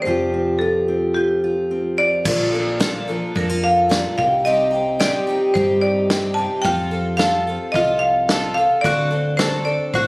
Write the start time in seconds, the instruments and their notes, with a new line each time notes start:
0.02 steel-string acoustic guitar F3, marimba C5
0.06 fingered electric bass F1, steel-string acoustic guitar C4 F4 G4
0.34 steel-string acoustic guitar C4
0.59 steel-string acoustic guitar F4, marimba A4
0.88 steel-string acoustic guitar C4
1.14 steel-string acoustic guitar F4, marimba G4
1.44 steel-string acoustic guitar F4
1.71 steel-string acoustic guitar C4
1.98 steel-string acoustic guitar F4, marimba D5
2.25 fingered electric bass A#1, twelve-string acoustic guitar A#2 D3 F3 A#3 D4 A4, steel-string acoustic guitar A#2 F4, kick, crash
2.52 twelve-string acoustic guitar F3 A#3 D4 A4
2.80 twelve-string acoustic guitar A#2 D3 F3 A#3 D4 A4, snare
3.08 steel-string acoustic guitar F3 A4, twelve-string acoustic guitar F3 A#3 D4 A4
3.35 fingered electric bass F2, twelve-string acoustic guitar F3 A#3 D4 A4, steel-string acoustic guitar D4, marimba A#4, kick
3.49 steel-string acoustic guitar F4
3.63 steel-string acoustic guitar A4, marimba F5
3.89 twelve-string acoustic guitar A#2 D3 F3 A#3 D4 A4, steel-string acoustic guitar A#2 F4, snare
4.18 fingered electric bass C2, steel-string acoustic guitar C3 D#4, twelve-string acoustic guitar C4 D#4 G4, marimba F5, kick
4.45 twelve-string acoustic guitar C3 G3 C4 D#4 G4, marimba D#5
4.71 twelve-string acoustic guitar C4 D#4 G4
4.99 twelve-string acoustic guitar C3 G3 C4 D#4 G4, steel-string acoustic guitar G3 G4, marimba D5, snare
5.27 twelve-string acoustic guitar C4 D#4 G4, steel-string acoustic guitar D#4
5.54 fingered electric bass G2, twelve-string acoustic guitar G3 C4 D#4 G4, steel-string acoustic guitar G4, marimba C5, kick
5.82 steel-string acoustic guitar G2 D#4, marimba D5
6.10 twelve-string acoustic guitar C3 G3 C4 D#4 G4, steel-string acoustic guitar C4, snare
6.34 steel-string acoustic guitar C3, twelve-string acoustic guitar D#4 G4, marimba A5
6.39 twelve-string acoustic guitar C4, steel-string acoustic guitar D#4
6.62 fingered electric bass F2, twelve-string acoustic guitar F3 C4 F4, five-string banjo F4, marimba G5, kick
6.66 twelve-string acoustic guitar A4
6.91 twelve-string acoustic guitar C4 F4 A4
7.17 twelve-string acoustic guitar F3 C4 F4 A4, five-string banjo A4, marimba F5, snare
7.47 twelve-string acoustic guitar C4 F4 A4
7.72 fingered electric bass C2, twelve-string acoustic guitar F3 C4 F4, five-string banjo F4, marimba D#5, kick
7.77 twelve-string acoustic guitar A4
7.99 marimba F5
8.29 twelve-string acoustic guitar F3 C4 F4 A4, five-string banjo A4, snare
8.54 twelve-string acoustic guitar A4, marimba F5
8.59 twelve-string acoustic guitar C4 F4
8.81 fingered electric bass D2, twelve-string acoustic guitar D3 F#3 C4, five-string banjo F#4, marimba D5, kick
8.86 twelve-string acoustic guitar D4 A4
9.11 twelve-string acoustic guitar C4 D4 A4
9.37 twelve-string acoustic guitar D3 F#3 C4 D4 A4, five-string banjo A4, marimba C5, snare
9.65 twelve-string acoustic guitar C4 D4 A4, marimba D5
9.94 fingered electric bass A1, twelve-string acoustic guitar F#3 C4 D4 A4, five-string banjo F#4, marimba C5, kick